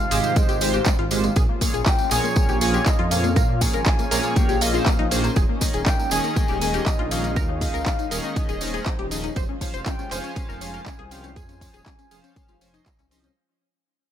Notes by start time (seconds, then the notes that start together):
Already playing: C3 D#3 F4 F5
0.11 G#1 G#2 G#3 G4 G#4 C5, open hi-hat, tambourine
0.24 G#3, closed hi-hat, tambourine
0.36 G#3 D#5, kick, closed hi-hat, tambourine
0.49 G#1 G4, closed hi-hat, tambourine
0.61 G#2 G#3 G4 C5, open hi-hat, tambourine
0.74 G4, closed hi-hat, tambourine
0.85 G#3, kick, clap, closed hi-hat, tambourine
0.99 G#1 F4, closed hi-hat
1.11 A#2 G#3 G4 C5, open hi-hat, tambourine
1.24 G#3, closed hi-hat, tambourine
1.36 A#1 F3 A#3 C#4 G#4, kick, closed hi-hat, tambourine
1.49 A#3
1.61 A#2 A#3 G#4 C#5, kick, open hi-hat, tambourine
1.74 A#1 G#4, closed hi-hat, tambourine
1.86 A#3 G5, kick, clap, closed hi-hat, tambourine
1.98 A#3, tambourine
2.11 A#1 A#2 A#3 G#4 C#5 G#5, clap, open hi-hat, tambourine
2.24 A#3, closed hi-hat, tambourine
2.36 A#3, kick, closed hi-hat, tambourine
2.49 A#1 G4, tambourine
2.61 A#2 A#3 G#4 C#5 G#5, open hi-hat, tambourine
2.74 G4, closed hi-hat, tambourine
2.86 A#3 D#5, kick, clap, closed hi-hat, tambourine
2.99 F2 F4, closed hi-hat
3.11 A#2 A#3 G#4 C#5 F5, open hi-hat, tambourine
3.24 A#3, closed hi-hat, tambourine
3.36 A#2 A#4, kick, closed hi-hat, tambourine
3.49 A#3
3.61 A#2 A#3 G#4 C#5 G#5, kick, open hi-hat, tambourine
3.73 G#1 A#4, closed hi-hat, tambourine
3.85 A#3, kick, clap, closed hi-hat, tambourine
3.99 A#3, closed hi-hat, tambourine
4.11 A#1 A#2 A#3 G#4 A#4 C#5, open hi-hat, tambourine
4.23 A#3, closed hi-hat, tambourine
4.36 A#3 G5, kick, closed hi-hat, tambourine
4.49 A#1 G4, closed hi-hat, tambourine
4.61 A#2 A#3 G#4 D#5 F5, open hi-hat, tambourine
4.74 A#2 A#3 F4 G#4 C5, closed hi-hat, tambourine
4.86 A#3, kick, clap, closed hi-hat, tambourine
4.99 A#1 D#4, closed hi-hat
5.11 D#3 A#3 G#4 C5, open hi-hat, tambourine
5.24 A#3, closed hi-hat, tambourine
5.36 D#1 D#3 G#3 D#4 G#4, kick, closed hi-hat, tambourine
5.49 A#3
5.61 D#3 A#3 C#4 G#4 D#5, kick, open hi-hat, tambourine
5.74 D#1 G#4, closed hi-hat, tambourine
5.86 A#3 G5, kick, clap, closed hi-hat, tambourine
5.99 A#3, tambourine
6.11 D#1 D#3 C#4 G#4 D#5 G#5, clap, open hi-hat, tambourine
6.24 A#3, closed hi-hat, tambourine
6.36 A#3, kick, closed hi-hat, tambourine
6.48 D#1 G4, tambourine
6.61 D#3 A#3 C#4 G#4 D#5 G#5, open hi-hat, tambourine
6.74 G4, closed hi-hat, tambourine
6.86 A#3 D#5, kick, clap, closed hi-hat, tambourine
6.99 A#1 F4, closed hi-hat
7.11 D#3 A#3 C#4 G#4 D#5 F5, open hi-hat, tambourine
7.24 A#3, closed hi-hat, tambourine
7.36 D#2 A#4, kick, closed hi-hat, tambourine
7.49 D#4
7.61 D#3 C#4 D#4 G#4 D#5 F5, kick, open hi-hat, tambourine
7.74 C#2 A#4, closed hi-hat, tambourine
7.86 D#4, kick, clap, closed hi-hat, tambourine
7.99 D#4, closed hi-hat, tambourine
8.11 D#1 D#3 C#4 G#4 A#4 D#5, open hi-hat, tambourine
8.24 D#4, closed hi-hat, tambourine
8.36 D#4 D#5, kick, closed hi-hat, tambourine
8.49 D#1 G#4, closed hi-hat, tambourine
8.61 D#3 C#4 D#4 G#4 C5 D#5, open hi-hat, tambourine
8.74 G#4, closed hi-hat, tambourine
8.86 D#4, kick, clap, closed hi-hat, tambourine
8.99 D#1 G4, closed hi-hat
9.11 F3 C#4 D#4 G#4 D#5, open hi-hat, tambourine
9.23 D#4, closed hi-hat, tambourine
9.36 F1 F3 G#3 F4 C5, kick, closed hi-hat, tambourine
9.49 C#4
9.61 F3 C#4 C5 F5, kick, open hi-hat, tambourine
9.74 F1 C5, closed hi-hat, tambourine
9.86 C#4 G5, kick, clap, closed hi-hat, tambourine
9.99 C#4, tambourine
10.11 F1 F3 C#4 C5 F5 G#5, clap, open hi-hat, tambourine
10.24 C#4, closed hi-hat, tambourine
10.36 C#4, kick, closed hi-hat, tambourine
10.49 F1 A#4, tambourine
10.61 F3 C#4 C5 F5 G#5, open hi-hat, tambourine
10.74 A#4, closed hi-hat, tambourine
10.86 C#4, kick, clap, closed hi-hat, tambourine
10.99 C2 G#4, closed hi-hat
11.11 F3 C#4 C5 F5 G5, open hi-hat, tambourine
11.24 C#4, closed hi-hat, tambourine
11.36 F2 G#4 G#5, kick, closed hi-hat, tambourine
11.49 C#4, closed hi-hat, tambourine
11.61 F3 C#4 C5 F5, kick, open hi-hat, tambourine
11.74 D#1 G#4, closed hi-hat, tambourine
11.86 C#4, kick, clap, closed hi-hat, tambourine
11.99 C#4, closed hi-hat, tambourine
12.11 F1 F3 C#4 G#4 C5 F5, open hi-hat, tambourine
12.24 C#4, closed hi-hat, tambourine
12.36 C#4, kick, closed hi-hat, tambourine
12.48 F1 F4, closed hi-hat, tambourine
12.61 F3 C#4 C5 G#5, open hi-hat, tambourine
12.74 F3 C#4 D#4 C5 D#5, closed hi-hat, tambourine
12.86 C#4, kick, clap, closed hi-hat, tambourine
12.99 C2 C#4, clap, closed hi-hat, tambourine
13.11 F3 C#4 C5 D#5, open hi-hat, tambourine
13.24 C#4, closed hi-hat, tambourine